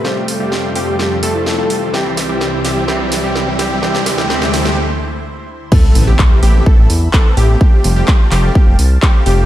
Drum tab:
CC |----------------|----------------|----------------|x---------------|
HH |--o---o---o---o-|--o---o---o---o-|--o---o---------|--o---o---o---o-|
CP |----------------|----------------|----------------|----x-------x---|
SD |o---o---o---o---|o-o-o-o-o-o-o-o-|oooooooo--------|----------------|
BD |----------------|----------------|----------------|o---o---o---o---|

CC |----------------|
HH |--o---o---o---o-|
CP |----x-x-----x---|
SD |----------------|
BD |o---o---o---o---|